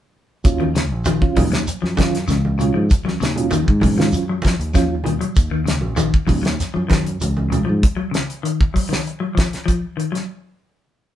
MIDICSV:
0, 0, Header, 1, 7, 480
1, 0, Start_track
1, 0, Key_signature, -6, "minor"
1, 0, Tempo, 614125
1, 361, Time_signature, 4, 2, 24, 8
1, 8716, End_track
2, 0, Start_track
2, 0, Title_t, "Reed electric piano"
2, 0, Program_c, 0, 4
2, 345, Note_on_c, 0, 54, 93
2, 352, Note_on_c, 0, 61, 85
2, 360, Note_on_c, 0, 65, 96
2, 534, Note_off_c, 0, 54, 0
2, 537, Note_off_c, 0, 61, 0
2, 541, Note_off_c, 0, 65, 0
2, 945, Note_on_c, 0, 54, 73
2, 951, Note_on_c, 0, 61, 72
2, 956, Note_on_c, 0, 65, 96
2, 1132, Note_off_c, 0, 54, 0
2, 1135, Note_off_c, 0, 61, 0
2, 1137, Note_off_c, 0, 65, 0
2, 1540, Note_on_c, 0, 54, 87
2, 1548, Note_on_c, 0, 61, 78
2, 1557, Note_on_c, 0, 65, 99
2, 1694, Note_off_c, 0, 54, 0
2, 1698, Note_off_c, 0, 61, 0
2, 1703, Note_off_c, 0, 65, 0
2, 2020, Note_on_c, 0, 54, 81
2, 2028, Note_on_c, 0, 61, 79
2, 2033, Note_on_c, 0, 65, 87
2, 2209, Note_off_c, 0, 54, 0
2, 2213, Note_off_c, 0, 61, 0
2, 2215, Note_off_c, 0, 65, 0
2, 2629, Note_on_c, 0, 54, 86
2, 2633, Note_on_c, 0, 61, 76
2, 2635, Note_on_c, 0, 65, 77
2, 2776, Note_off_c, 0, 54, 0
2, 2778, Note_off_c, 0, 61, 0
2, 2779, Note_off_c, 0, 65, 0
2, 3106, Note_on_c, 0, 54, 88
2, 3115, Note_on_c, 0, 61, 71
2, 3116, Note_on_c, 0, 65, 83
2, 3291, Note_off_c, 0, 54, 0
2, 3295, Note_off_c, 0, 61, 0
2, 3296, Note_off_c, 0, 65, 0
2, 3701, Note_on_c, 0, 54, 87
2, 3713, Note_on_c, 0, 61, 88
2, 3715, Note_on_c, 0, 65, 96
2, 3853, Note_off_c, 0, 54, 0
2, 3859, Note_off_c, 0, 61, 0
2, 3860, Note_off_c, 0, 65, 0
2, 8716, End_track
3, 0, Start_track
3, 0, Title_t, "Clean electric guitar"
3, 0, Program_c, 1, 27
3, 468, Note_on_c, 1, 51, 73
3, 542, Note_off_c, 1, 51, 0
3, 589, Note_on_c, 1, 49, 69
3, 734, Note_off_c, 1, 49, 0
3, 827, Note_on_c, 1, 51, 80
3, 972, Note_off_c, 1, 51, 0
3, 1070, Note_on_c, 1, 54, 75
3, 1144, Note_off_c, 1, 54, 0
3, 1187, Note_on_c, 1, 54, 64
3, 1332, Note_off_c, 1, 54, 0
3, 1422, Note_on_c, 1, 53, 66
3, 1497, Note_off_c, 1, 53, 0
3, 1541, Note_on_c, 1, 51, 72
3, 1688, Note_off_c, 1, 51, 0
3, 1780, Note_on_c, 1, 49, 73
3, 1927, Note_off_c, 1, 49, 0
3, 2023, Note_on_c, 1, 49, 68
3, 2099, Note_off_c, 1, 49, 0
3, 2142, Note_on_c, 1, 53, 71
3, 2289, Note_off_c, 1, 53, 0
3, 2382, Note_on_c, 1, 54, 79
3, 2457, Note_off_c, 1, 54, 0
3, 2504, Note_on_c, 1, 49, 65
3, 2649, Note_off_c, 1, 49, 0
3, 2745, Note_on_c, 1, 51, 90
3, 2890, Note_off_c, 1, 51, 0
3, 2983, Note_on_c, 1, 54, 74
3, 3059, Note_off_c, 1, 54, 0
3, 3109, Note_on_c, 1, 51, 68
3, 3254, Note_off_c, 1, 51, 0
3, 3356, Note_on_c, 1, 54, 66
3, 3427, Note_off_c, 1, 54, 0
3, 3477, Note_on_c, 1, 53, 74
3, 3618, Note_off_c, 1, 53, 0
3, 3712, Note_on_c, 1, 53, 83
3, 3855, Note_off_c, 1, 53, 0
3, 3951, Note_on_c, 1, 51, 73
3, 4024, Note_off_c, 1, 51, 0
3, 4069, Note_on_c, 1, 54, 75
3, 4142, Note_off_c, 1, 54, 0
3, 4310, Note_on_c, 1, 51, 76
3, 4382, Note_off_c, 1, 51, 0
3, 4420, Note_on_c, 1, 49, 68
3, 4567, Note_off_c, 1, 49, 0
3, 4661, Note_on_c, 1, 51, 89
3, 4807, Note_off_c, 1, 51, 0
3, 4898, Note_on_c, 1, 54, 74
3, 4975, Note_off_c, 1, 54, 0
3, 5026, Note_on_c, 1, 54, 71
3, 5172, Note_off_c, 1, 54, 0
3, 5267, Note_on_c, 1, 53, 69
3, 5341, Note_off_c, 1, 53, 0
3, 5381, Note_on_c, 1, 51, 66
3, 5528, Note_off_c, 1, 51, 0
3, 5863, Note_on_c, 1, 49, 73
3, 5939, Note_off_c, 1, 49, 0
3, 5978, Note_on_c, 1, 53, 70
3, 6127, Note_off_c, 1, 53, 0
3, 6226, Note_on_c, 1, 54, 69
3, 6300, Note_off_c, 1, 54, 0
3, 6342, Note_on_c, 1, 49, 68
3, 6489, Note_off_c, 1, 49, 0
3, 6591, Note_on_c, 1, 51, 75
3, 6736, Note_off_c, 1, 51, 0
3, 6831, Note_on_c, 1, 54, 73
3, 6906, Note_off_c, 1, 54, 0
3, 6948, Note_on_c, 1, 51, 65
3, 7095, Note_off_c, 1, 51, 0
3, 7192, Note_on_c, 1, 54, 71
3, 7265, Note_off_c, 1, 54, 0
3, 7307, Note_on_c, 1, 53, 65
3, 7453, Note_off_c, 1, 53, 0
3, 7547, Note_on_c, 1, 53, 78
3, 7694, Note_off_c, 1, 53, 0
3, 7792, Note_on_c, 1, 51, 70
3, 7867, Note_off_c, 1, 51, 0
3, 7910, Note_on_c, 1, 54, 63
3, 7984, Note_off_c, 1, 54, 0
3, 8716, End_track
4, 0, Start_track
4, 0, Title_t, "Fingered electric bass"
4, 0, Program_c, 2, 33
4, 352, Note_on_c, 2, 39, 82
4, 719, Note_off_c, 2, 39, 0
4, 719, Note_on_c, 2, 34, 75
4, 931, Note_off_c, 2, 34, 0
4, 1073, Note_on_c, 2, 39, 88
4, 1286, Note_off_c, 2, 39, 0
4, 1433, Note_on_c, 2, 42, 91
4, 1751, Note_off_c, 2, 42, 0
4, 1791, Note_on_c, 2, 37, 75
4, 2111, Note_off_c, 2, 37, 0
4, 2152, Note_on_c, 2, 44, 83
4, 2259, Note_off_c, 2, 44, 0
4, 2514, Note_on_c, 2, 39, 87
4, 2881, Note_off_c, 2, 39, 0
4, 2881, Note_on_c, 2, 44, 76
4, 3232, Note_off_c, 2, 44, 0
4, 3232, Note_on_c, 2, 42, 85
4, 3551, Note_off_c, 2, 42, 0
4, 3591, Note_on_c, 2, 39, 89
4, 3909, Note_off_c, 2, 39, 0
4, 3958, Note_on_c, 2, 39, 75
4, 4064, Note_off_c, 2, 39, 0
4, 4198, Note_on_c, 2, 39, 85
4, 4554, Note_off_c, 2, 39, 0
4, 4554, Note_on_c, 2, 34, 81
4, 4767, Note_off_c, 2, 34, 0
4, 4917, Note_on_c, 2, 39, 86
4, 5128, Note_off_c, 2, 39, 0
4, 5284, Note_on_c, 2, 42, 104
4, 5597, Note_off_c, 2, 42, 0
4, 5646, Note_on_c, 2, 37, 86
4, 5961, Note_off_c, 2, 37, 0
4, 6012, Note_on_c, 2, 44, 85
4, 6111, Note_off_c, 2, 44, 0
4, 8716, End_track
5, 0, Start_track
5, 0, Title_t, "Muted fingered electric bass strokes"
5, 2395, Note_on_c, 9, 29, 39
5, 2473, Note_off_c, 9, 29, 0
5, 8716, End_track
6, 0, Start_track
6, 0, Title_t, "Shekere"
6, 352, Note_on_c, 9, 82, 73
6, 430, Note_off_c, 9, 82, 0
6, 591, Note_on_c, 9, 82, 31
6, 669, Note_off_c, 9, 82, 0
6, 821, Note_on_c, 9, 82, 74
6, 899, Note_off_c, 9, 82, 0
6, 1067, Note_on_c, 9, 82, 27
6, 1145, Note_off_c, 9, 82, 0
6, 1306, Note_on_c, 9, 82, 86
6, 1384, Note_off_c, 9, 82, 0
6, 1543, Note_on_c, 9, 82, 28
6, 1621, Note_off_c, 9, 82, 0
6, 1780, Note_on_c, 9, 82, 87
6, 1858, Note_off_c, 9, 82, 0
6, 2024, Note_on_c, 9, 82, 27
6, 2103, Note_off_c, 9, 82, 0
6, 2268, Note_on_c, 9, 82, 79
6, 2347, Note_off_c, 9, 82, 0
6, 2506, Note_on_c, 9, 82, 29
6, 2584, Note_off_c, 9, 82, 0
6, 2746, Note_on_c, 9, 82, 75
6, 2824, Note_off_c, 9, 82, 0
6, 2987, Note_on_c, 9, 82, 24
6, 3065, Note_off_c, 9, 82, 0
6, 3220, Note_on_c, 9, 82, 82
6, 3298, Note_off_c, 9, 82, 0
6, 3468, Note_on_c, 9, 82, 28
6, 3546, Note_off_c, 9, 82, 0
6, 3705, Note_on_c, 9, 82, 82
6, 3784, Note_off_c, 9, 82, 0
6, 3952, Note_on_c, 9, 82, 28
6, 4030, Note_off_c, 9, 82, 0
6, 4189, Note_on_c, 9, 82, 78
6, 4267, Note_off_c, 9, 82, 0
6, 4431, Note_on_c, 9, 82, 29
6, 4509, Note_off_c, 9, 82, 0
6, 4666, Note_on_c, 9, 82, 84
6, 4744, Note_off_c, 9, 82, 0
6, 4908, Note_on_c, 9, 82, 26
6, 4986, Note_off_c, 9, 82, 0
6, 5159, Note_on_c, 9, 82, 84
6, 5237, Note_off_c, 9, 82, 0
6, 5403, Note_on_c, 9, 82, 28
6, 5481, Note_off_c, 9, 82, 0
6, 5632, Note_on_c, 9, 82, 74
6, 5710, Note_off_c, 9, 82, 0
6, 5878, Note_on_c, 9, 82, 30
6, 5956, Note_off_c, 9, 82, 0
6, 8716, End_track
7, 0, Start_track
7, 0, Title_t, "Drums"
7, 351, Note_on_c, 9, 36, 90
7, 351, Note_on_c, 9, 42, 59
7, 429, Note_off_c, 9, 36, 0
7, 429, Note_off_c, 9, 42, 0
7, 472, Note_on_c, 9, 63, 70
7, 550, Note_off_c, 9, 63, 0
7, 591, Note_on_c, 9, 42, 56
7, 598, Note_on_c, 9, 38, 68
7, 669, Note_off_c, 9, 42, 0
7, 676, Note_off_c, 9, 38, 0
7, 827, Note_on_c, 9, 63, 92
7, 832, Note_on_c, 9, 42, 55
7, 905, Note_off_c, 9, 63, 0
7, 910, Note_off_c, 9, 42, 0
7, 952, Note_on_c, 9, 36, 72
7, 1030, Note_off_c, 9, 36, 0
7, 1066, Note_on_c, 9, 46, 57
7, 1067, Note_on_c, 9, 63, 92
7, 1067, Note_on_c, 9, 64, 95
7, 1069, Note_on_c, 9, 36, 63
7, 1145, Note_off_c, 9, 46, 0
7, 1146, Note_off_c, 9, 63, 0
7, 1146, Note_off_c, 9, 64, 0
7, 1147, Note_off_c, 9, 36, 0
7, 1191, Note_on_c, 9, 42, 54
7, 1199, Note_on_c, 9, 38, 70
7, 1270, Note_off_c, 9, 42, 0
7, 1277, Note_off_c, 9, 38, 0
7, 1311, Note_on_c, 9, 42, 69
7, 1389, Note_off_c, 9, 42, 0
7, 1444, Note_on_c, 9, 38, 27
7, 1522, Note_off_c, 9, 38, 0
7, 1542, Note_on_c, 9, 63, 95
7, 1552, Note_on_c, 9, 36, 64
7, 1557, Note_on_c, 9, 42, 46
7, 1564, Note_on_c, 9, 38, 67
7, 1620, Note_off_c, 9, 63, 0
7, 1630, Note_off_c, 9, 36, 0
7, 1635, Note_off_c, 9, 42, 0
7, 1642, Note_off_c, 9, 38, 0
7, 1678, Note_on_c, 9, 42, 51
7, 1685, Note_on_c, 9, 38, 26
7, 1756, Note_off_c, 9, 42, 0
7, 1763, Note_off_c, 9, 38, 0
7, 1792, Note_on_c, 9, 63, 71
7, 1799, Note_on_c, 9, 42, 61
7, 1806, Note_on_c, 9, 38, 29
7, 1871, Note_off_c, 9, 63, 0
7, 1877, Note_off_c, 9, 42, 0
7, 1884, Note_off_c, 9, 38, 0
7, 1913, Note_on_c, 9, 63, 75
7, 1991, Note_off_c, 9, 63, 0
7, 2033, Note_on_c, 9, 64, 71
7, 2038, Note_on_c, 9, 42, 52
7, 2111, Note_off_c, 9, 64, 0
7, 2116, Note_off_c, 9, 42, 0
7, 2274, Note_on_c, 9, 36, 92
7, 2281, Note_on_c, 9, 42, 64
7, 2353, Note_off_c, 9, 36, 0
7, 2359, Note_off_c, 9, 42, 0
7, 2390, Note_on_c, 9, 63, 68
7, 2408, Note_on_c, 9, 38, 27
7, 2468, Note_off_c, 9, 63, 0
7, 2486, Note_off_c, 9, 38, 0
7, 2521, Note_on_c, 9, 42, 52
7, 2528, Note_on_c, 9, 38, 76
7, 2599, Note_off_c, 9, 42, 0
7, 2606, Note_off_c, 9, 38, 0
7, 2625, Note_on_c, 9, 64, 70
7, 2638, Note_on_c, 9, 42, 47
7, 2703, Note_off_c, 9, 64, 0
7, 2717, Note_off_c, 9, 42, 0
7, 2741, Note_on_c, 9, 63, 88
7, 2759, Note_on_c, 9, 42, 49
7, 2819, Note_off_c, 9, 63, 0
7, 2837, Note_off_c, 9, 42, 0
7, 2876, Note_on_c, 9, 36, 72
7, 2954, Note_off_c, 9, 36, 0
7, 2980, Note_on_c, 9, 63, 91
7, 2980, Note_on_c, 9, 64, 83
7, 2995, Note_on_c, 9, 36, 62
7, 2999, Note_on_c, 9, 46, 59
7, 3059, Note_off_c, 9, 63, 0
7, 3059, Note_off_c, 9, 64, 0
7, 3073, Note_off_c, 9, 36, 0
7, 3078, Note_off_c, 9, 46, 0
7, 3126, Note_on_c, 9, 38, 63
7, 3204, Note_off_c, 9, 38, 0
7, 3242, Note_on_c, 9, 42, 60
7, 3320, Note_off_c, 9, 42, 0
7, 3454, Note_on_c, 9, 63, 87
7, 3476, Note_on_c, 9, 36, 68
7, 3481, Note_on_c, 9, 42, 44
7, 3488, Note_on_c, 9, 38, 70
7, 3532, Note_off_c, 9, 63, 0
7, 3554, Note_off_c, 9, 36, 0
7, 3560, Note_off_c, 9, 42, 0
7, 3567, Note_off_c, 9, 38, 0
7, 3601, Note_on_c, 9, 42, 45
7, 3679, Note_off_c, 9, 42, 0
7, 3706, Note_on_c, 9, 63, 80
7, 3714, Note_on_c, 9, 36, 62
7, 3716, Note_on_c, 9, 42, 61
7, 3723, Note_on_c, 9, 38, 25
7, 3784, Note_off_c, 9, 63, 0
7, 3792, Note_off_c, 9, 36, 0
7, 3794, Note_off_c, 9, 42, 0
7, 3801, Note_off_c, 9, 38, 0
7, 3937, Note_on_c, 9, 64, 75
7, 3957, Note_on_c, 9, 42, 44
7, 4015, Note_off_c, 9, 64, 0
7, 4035, Note_off_c, 9, 42, 0
7, 4074, Note_on_c, 9, 42, 43
7, 4152, Note_off_c, 9, 42, 0
7, 4194, Note_on_c, 9, 36, 92
7, 4195, Note_on_c, 9, 42, 63
7, 4272, Note_off_c, 9, 36, 0
7, 4273, Note_off_c, 9, 42, 0
7, 4435, Note_on_c, 9, 42, 54
7, 4442, Note_on_c, 9, 38, 77
7, 4513, Note_off_c, 9, 42, 0
7, 4520, Note_off_c, 9, 38, 0
7, 4539, Note_on_c, 9, 63, 66
7, 4617, Note_off_c, 9, 63, 0
7, 4665, Note_on_c, 9, 63, 89
7, 4674, Note_on_c, 9, 42, 51
7, 4744, Note_off_c, 9, 63, 0
7, 4752, Note_off_c, 9, 42, 0
7, 4798, Note_on_c, 9, 36, 75
7, 4876, Note_off_c, 9, 36, 0
7, 4903, Note_on_c, 9, 63, 89
7, 4903, Note_on_c, 9, 64, 90
7, 4916, Note_on_c, 9, 36, 59
7, 4916, Note_on_c, 9, 46, 56
7, 4981, Note_off_c, 9, 63, 0
7, 4981, Note_off_c, 9, 64, 0
7, 4994, Note_off_c, 9, 36, 0
7, 4994, Note_off_c, 9, 46, 0
7, 5042, Note_on_c, 9, 42, 55
7, 5049, Note_on_c, 9, 38, 66
7, 5120, Note_off_c, 9, 42, 0
7, 5127, Note_off_c, 9, 38, 0
7, 5160, Note_on_c, 9, 42, 64
7, 5167, Note_on_c, 9, 38, 25
7, 5238, Note_off_c, 9, 42, 0
7, 5245, Note_off_c, 9, 38, 0
7, 5390, Note_on_c, 9, 63, 94
7, 5398, Note_on_c, 9, 36, 69
7, 5400, Note_on_c, 9, 42, 49
7, 5407, Note_on_c, 9, 38, 62
7, 5468, Note_off_c, 9, 63, 0
7, 5476, Note_off_c, 9, 36, 0
7, 5478, Note_off_c, 9, 42, 0
7, 5485, Note_off_c, 9, 38, 0
7, 5522, Note_on_c, 9, 42, 51
7, 5600, Note_off_c, 9, 42, 0
7, 5636, Note_on_c, 9, 63, 75
7, 5640, Note_on_c, 9, 42, 69
7, 5714, Note_off_c, 9, 63, 0
7, 5718, Note_off_c, 9, 42, 0
7, 5758, Note_on_c, 9, 63, 73
7, 5836, Note_off_c, 9, 63, 0
7, 5879, Note_on_c, 9, 63, 64
7, 5879, Note_on_c, 9, 64, 83
7, 5881, Note_on_c, 9, 42, 48
7, 5957, Note_off_c, 9, 63, 0
7, 5957, Note_off_c, 9, 64, 0
7, 5959, Note_off_c, 9, 42, 0
7, 6121, Note_on_c, 9, 42, 73
7, 6122, Note_on_c, 9, 36, 92
7, 6200, Note_off_c, 9, 36, 0
7, 6200, Note_off_c, 9, 42, 0
7, 6363, Note_on_c, 9, 42, 51
7, 6370, Note_on_c, 9, 38, 73
7, 6441, Note_off_c, 9, 42, 0
7, 6448, Note_off_c, 9, 38, 0
7, 6486, Note_on_c, 9, 42, 47
7, 6565, Note_off_c, 9, 42, 0
7, 6607, Note_on_c, 9, 42, 65
7, 6685, Note_off_c, 9, 42, 0
7, 6726, Note_on_c, 9, 36, 79
7, 6804, Note_off_c, 9, 36, 0
7, 6846, Note_on_c, 9, 36, 57
7, 6850, Note_on_c, 9, 46, 60
7, 6924, Note_off_c, 9, 36, 0
7, 6928, Note_off_c, 9, 46, 0
7, 6977, Note_on_c, 9, 38, 71
7, 7056, Note_off_c, 9, 38, 0
7, 7091, Note_on_c, 9, 42, 60
7, 7169, Note_off_c, 9, 42, 0
7, 7327, Note_on_c, 9, 36, 69
7, 7329, Note_on_c, 9, 42, 47
7, 7336, Note_on_c, 9, 38, 68
7, 7406, Note_off_c, 9, 36, 0
7, 7407, Note_off_c, 9, 42, 0
7, 7414, Note_off_c, 9, 38, 0
7, 7450, Note_on_c, 9, 42, 48
7, 7457, Note_on_c, 9, 38, 28
7, 7529, Note_off_c, 9, 42, 0
7, 7536, Note_off_c, 9, 38, 0
7, 7567, Note_on_c, 9, 42, 63
7, 7568, Note_on_c, 9, 36, 62
7, 7645, Note_off_c, 9, 42, 0
7, 7646, Note_off_c, 9, 36, 0
7, 7813, Note_on_c, 9, 42, 48
7, 7891, Note_off_c, 9, 42, 0
7, 7935, Note_on_c, 9, 42, 47
7, 7942, Note_on_c, 9, 38, 23
7, 8013, Note_off_c, 9, 42, 0
7, 8020, Note_off_c, 9, 38, 0
7, 8716, End_track
0, 0, End_of_file